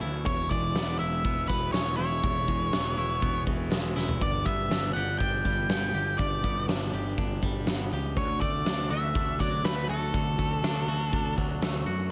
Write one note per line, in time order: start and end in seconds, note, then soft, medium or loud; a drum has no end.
0.00 0.23 D2 medium
0.00 1.49 E3 medium
0.00 0.26 A3 medium
0.00 0.26 C#4 medium
0.00 1.00 E4 medium
0.00 open hi-hat soft
0.26 0.48 E1 medium
0.26 1.50 E2 medium
0.26 0.51 C#5 medium
0.26 kick loud
0.26 open hi-hat medium
0.49 0.73 E1 medium
0.49 1.74 G#3 medium
0.49 0.99 D5 medium
0.49 kick medium
0.49 open hi-hat soft
0.75 0.98 E1 medium
0.75 1.24 B3 medium
0.75 snare loud
0.75 open hi-hat medium
0.99 1.23 E1 medium
0.99 1.98 E4 medium
0.99 1.46 E5 loud
0.99 open hi-hat soft
1.24 1.47 E1 medium
1.24 2.72 B3 medium
1.24 kick medium
1.24 open hi-hat medium
1.48 1.72 E1 medium
1.48 2.73 E3 medium
1.48 1.72 B4 medium
1.48 kick medium
1.48 open hi-hat medium
1.73 1.97 E1 medium
1.73 2.47 G#3 medium
1.73 1.96 C#5 medium
1.73 snare loud
1.73 open hi-hat medium
1.97 2.21 E1 medium
1.97 2.96 E4 medium
1.97 3.42 C#5 medium
1.97 open hi-hat soft
2.23 2.46 E1 medium
2.23 3.47 E2 medium
2.23 kick loud
2.23 open hi-hat medium
2.48 2.71 E1 medium
2.48 3.70 G#3 medium
2.48 kick medium
2.48 open hi-hat medium
2.73 2.95 E1 medium
2.73 3.22 B3 medium
2.73 snare loud
2.73 open hi-hat medium
2.97 3.20 E1 medium
2.97 3.95 E4 medium
2.97 open hi-hat soft
3.22 3.45 E1 medium
3.22 4.46 B3 medium
3.22 kick loud
3.22 open hi-hat medium
3.47 3.69 E1 medium
3.47 4.21 E3 medium
3.47 kick medium
3.47 open hi-hat soft
3.71 3.94 E1 medium
3.71 4.21 G#3 medium
3.71 snare loud
3.71 open hi-hat medium
3.96 4.19 E1 medium
3.96 4.21 E4 medium
3.96 snare medium
4.09 floor tom medium
4.21 4.44 G1 medium
4.21 5.45 G2 medium
4.21 4.47 D5 medium
4.21 kick loud
4.21 open hi-hat medium
4.46 4.68 G1 medium
4.46 5.68 B3 medium
4.46 4.93 E5 medium
4.46 kick medium
4.46 open hi-hat soft
4.70 4.93 G1 medium
4.70 5.21 D4 medium
4.70 snare loud
4.70 open hi-hat medium
4.93 5.18 G1 medium
4.93 5.93 G4 medium
4.93 5.18 F#5 medium
4.93 open hi-hat soft
5.19 5.43 G1 medium
5.19 6.68 D4 medium
5.19 6.21 G5 loud
5.19 kick medium
5.19 open hi-hat medium
5.45 5.67 G1 medium
5.45 6.69 G3 medium
5.45 kick medium
5.45 snare soft
5.45 open hi-hat soft
5.69 5.92 G1 medium
5.69 6.43 B3 medium
5.69 snare loud
5.69 open hi-hat medium
5.94 6.16 G1 medium
5.94 6.93 G4 medium
5.94 open hi-hat soft
6.18 6.41 G1 medium
6.18 7.43 G2 medium
6.18 6.64 D5 medium
6.18 kick loud
6.18 open hi-hat medium
6.44 6.66 G1 medium
6.44 7.67 B3 medium
6.44 kick medium
6.44 open hi-hat soft
6.69 6.91 G1 medium
6.69 7.18 D4 medium
6.69 snare loud
6.69 open hi-hat medium
6.82 snare soft
6.93 7.15 G1 medium
6.93 7.92 G4 medium
6.93 open hi-hat soft
7.18 7.40 G1 medium
7.18 8.66 D4 medium
7.18 kick medium
7.18 open hi-hat medium
7.43 7.65 G1 medium
7.43 8.17 G3 medium
7.43 kick medium
7.43 open hi-hat soft
7.67 7.89 G1 medium
7.67 8.17 B3 medium
7.67 snare loud
7.67 open hi-hat medium
7.92 8.14 C#2 medium
7.92 8.18 G4 medium
7.92 open hi-hat soft
8.17 8.39 D2 medium
8.17 9.41 D3 medium
8.17 8.41 C#5 loud
8.17 kick loud
8.17 open hi-hat medium
8.41 8.64 D2 medium
8.41 9.64 A3 medium
8.41 8.90 D5 loud
8.41 kick medium
8.41 open hi-hat soft
8.66 8.88 D2 medium
8.66 9.15 D4 medium
8.66 snare loud
8.66 open hi-hat medium
8.78 snare soft
8.90 9.13 D2 medium
8.90 9.89 F#4 medium
8.90 9.40 E5 loud
8.90 open hi-hat soft
9.15 9.38 D2 medium
9.15 10.40 D4 medium
9.15 kick loud
9.15 open hi-hat medium
9.40 9.62 D2 medium
9.40 10.64 F#3 medium
9.40 9.63 D5 medium
9.40 kick medium
9.40 open hi-hat soft
9.65 9.87 D2 medium
9.65 10.38 A3 medium
9.65 9.89 B4 medium
9.65 snare loud
9.65 open hi-hat medium
9.89 10.12 D2 medium
9.89 10.87 F#4 medium
9.89 11.34 A4 medium
9.89 open hi-hat soft
10.14 10.37 D2 medium
10.14 11.38 D3 medium
10.14 kick loud
10.14 open hi-hat medium
10.39 10.61 D2 medium
10.39 11.61 A3 medium
10.39 kick medium
10.39 open hi-hat medium
10.64 10.86 D2 medium
10.64 11.12 D4 medium
10.64 snare loud
10.64 open hi-hat medium
10.88 11.10 D2 medium
10.88 11.85 F#4 medium
10.88 open hi-hat medium
11.13 11.35 D2 medium
11.13 12.11 D4 medium
11.13 kick medium
11.13 open hi-hat medium
11.37 11.60 D2 medium
11.37 12.11 F#3 medium
11.37 kick medium
11.37 open hi-hat soft
11.62 11.85 D2 medium
11.62 12.11 A3 medium
11.62 snare loud
11.62 open hi-hat medium
11.86 12.10 F#2 medium
11.86 12.11 F#4 medium
11.86 open hi-hat soft